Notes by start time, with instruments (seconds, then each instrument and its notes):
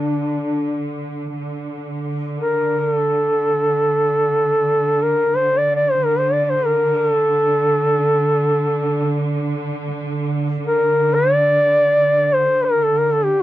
Already playing: cello section D3, duduk D4
1.37 cello section D3
2.39 duduk A#4
2.80 duduk A#4
2.93 duduk A4
5.02 duduk A#4
5.37 duduk C5
5.57 duduk D5
5.76 duduk D5
5.91 duduk C5
6.05 duduk A#4
6.19 duduk C5
6.33 duduk D5
6.44 duduk D5
6.50 duduk C5
6.66 duduk A#4
6.96 duduk A#4
7.08 duduk A4
10.67 duduk A#4
11.15 duduk D5
12.34 duduk C5
12.65 duduk A#4
12.83 duduk A4
12.99 duduk A#4
13.13 duduk A4
13.25 duduk G4